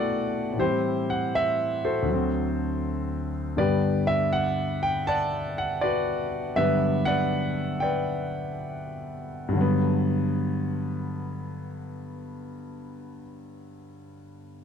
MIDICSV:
0, 0, Header, 1, 2, 480
1, 0, Start_track
1, 0, Key_signature, 1, "major"
1, 0, Tempo, 749064
1, 368, Time_signature, 4, 2, 24, 8
1, 9383, End_track
2, 0, Start_track
2, 0, Title_t, "Grand piano"
2, 0, Program_c, 0, 0
2, 0, Control_c, 0, 64, 127
2, 0, Note_on_c, 0, 47, 45
2, 0, Note_on_c, 0, 54, 47
2, 0, Note_on_c, 0, 57, 40
2, 0, Note_on_c, 0, 59, 38
2, 0, Note_on_c, 0, 62, 53
2, 0, Note_on_c, 0, 64, 42
2, 0, Note_on_c, 0, 66, 61
2, 0, Note_on_c, 0, 69, 58
2, 0, Note_on_c, 0, 74, 91
2, 0, Note_on_c, 0, 76, 86
2, 0, Note_on_c, 0, 78, 88
2, 0, Note_on_c, 0, 79, 88
2, 0, Note_on_c, 0, 81, 91
2, 268, Note_off_c, 0, 74, 0
2, 335, Note_on_c, 0, 45, 46
2, 348, Note_off_c, 0, 66, 0
2, 350, Note_off_c, 0, 69, 0
2, 352, Note_off_c, 0, 47, 0
2, 359, Note_on_c, 0, 52, 48
2, 363, Note_off_c, 0, 54, 0
2, 364, Note_off_c, 0, 57, 0
2, 368, Note_off_c, 0, 64, 0
2, 369, Note_off_c, 0, 59, 0
2, 376, Control_c, 0, 64, 0
2, 377, Note_off_c, 0, 78, 0
2, 378, Note_on_c, 0, 64, 61
2, 379, Note_off_c, 0, 79, 0
2, 379, Note_off_c, 0, 81, 0
2, 379, Note_on_c, 0, 67, 63
2, 380, Note_off_c, 0, 76, 0
2, 382, Note_on_c, 0, 55, 42
2, 382, Note_on_c, 0, 72, 82
2, 388, Note_off_c, 0, 62, 0
2, 407, Note_on_c, 0, 60, 50
2, 472, Control_c, 0, 64, 127
2, 703, Note_off_c, 0, 72, 0
2, 704, Note_on_c, 0, 78, 80
2, 739, Note_off_c, 0, 78, 0
2, 867, Note_on_c, 0, 76, 91
2, 936, Note_off_c, 0, 76, 0
2, 1183, Note_on_c, 0, 66, 47
2, 1183, Note_on_c, 0, 69, 53
2, 1183, Note_on_c, 0, 72, 72
2, 1295, Note_on_c, 0, 38, 51
2, 1306, Note_off_c, 0, 64, 0
2, 1307, Note_off_c, 0, 67, 0
2, 1311, Note_off_c, 0, 45, 0
2, 1319, Note_on_c, 0, 50, 46
2, 1322, Note_off_c, 0, 52, 0
2, 1334, Note_off_c, 0, 55, 0
2, 1335, Control_c, 0, 64, 0
2, 1343, Note_on_c, 0, 54, 45
2, 1346, Note_off_c, 0, 60, 0
2, 1366, Note_on_c, 0, 60, 56
2, 1456, Control_c, 0, 64, 127
2, 2108, Note_off_c, 0, 66, 0
2, 2108, Note_off_c, 0, 69, 0
2, 2108, Note_off_c, 0, 72, 0
2, 2270, Note_off_c, 0, 38, 0
2, 2279, Note_off_c, 0, 50, 0
2, 2286, Note_on_c, 0, 43, 46
2, 2289, Note_on_c, 0, 50, 45
2, 2291, Note_on_c, 0, 55, 45
2, 2294, Note_off_c, 0, 54, 0
2, 2294, Note_on_c, 0, 59, 54
2, 2295, Note_on_c, 0, 74, 83
2, 2296, Control_c, 0, 64, 0
2, 2302, Note_on_c, 0, 71, 62
2, 2304, Note_on_c, 0, 67, 64
2, 2305, Note_off_c, 0, 60, 0
2, 2402, Control_c, 0, 64, 127
2, 2587, Note_off_c, 0, 74, 0
2, 2609, Note_on_c, 0, 76, 92
2, 2756, Note_off_c, 0, 76, 0
2, 2772, Note_on_c, 0, 78, 96
2, 3093, Note_on_c, 0, 79, 93
2, 3097, Note_off_c, 0, 78, 0
2, 3227, Note_off_c, 0, 71, 0
2, 3228, Note_off_c, 0, 67, 0
2, 3239, Note_off_c, 0, 79, 0
2, 3250, Note_on_c, 0, 81, 101
2, 3259, Note_on_c, 0, 74, 70
2, 3260, Note_on_c, 0, 78, 69
2, 3567, Note_off_c, 0, 78, 0
2, 3576, Note_off_c, 0, 81, 0
2, 3577, Note_on_c, 0, 78, 83
2, 3716, Note_off_c, 0, 74, 0
2, 3726, Note_on_c, 0, 74, 83
2, 3736, Note_off_c, 0, 78, 0
2, 3738, Note_on_c, 0, 66, 61
2, 3741, Note_on_c, 0, 71, 68
2, 4099, Note_off_c, 0, 74, 0
2, 4192, Note_off_c, 0, 43, 0
2, 4196, Note_off_c, 0, 50, 0
2, 4200, Note_off_c, 0, 59, 0
2, 4202, Note_on_c, 0, 43, 55
2, 4205, Note_on_c, 0, 50, 46
2, 4205, Note_on_c, 0, 76, 90
2, 4207, Note_off_c, 0, 55, 0
2, 4207, Note_on_c, 0, 54, 48
2, 4208, Note_off_c, 0, 71, 0
2, 4209, Note_on_c, 0, 59, 56
2, 4218, Note_on_c, 0, 71, 68
2, 4276, Note_off_c, 0, 76, 0
2, 4520, Note_on_c, 0, 78, 101
2, 4523, Note_off_c, 0, 71, 0
2, 4533, Note_on_c, 0, 71, 66
2, 4534, Note_on_c, 0, 74, 62
2, 4665, Note_off_c, 0, 66, 0
2, 5000, Note_on_c, 0, 79, 76
2, 5004, Note_off_c, 0, 74, 0
2, 5005, Note_off_c, 0, 71, 0
2, 5014, Note_on_c, 0, 71, 59
2, 5014, Note_on_c, 0, 74, 58
2, 5016, Note_off_c, 0, 78, 0
2, 5617, Note_off_c, 0, 79, 0
2, 5943, Note_off_c, 0, 71, 0
2, 5943, Note_off_c, 0, 74, 0
2, 6069, Note_off_c, 0, 43, 0
2, 6078, Note_on_c, 0, 43, 65
2, 6096, Note_off_c, 0, 50, 0
2, 6106, Note_on_c, 0, 50, 56
2, 6121, Note_off_c, 0, 54, 0
2, 6126, Note_off_c, 0, 59, 0
2, 6131, Control_c, 0, 64, 0
2, 6131, Note_on_c, 0, 54, 57
2, 6157, Note_on_c, 0, 59, 75
2, 6252, Control_c, 0, 64, 127
2, 8381, Note_off_c, 0, 43, 0
2, 8409, Note_off_c, 0, 50, 0
2, 8434, Note_off_c, 0, 54, 0
2, 8460, Note_off_c, 0, 59, 0
2, 9383, End_track
0, 0, End_of_file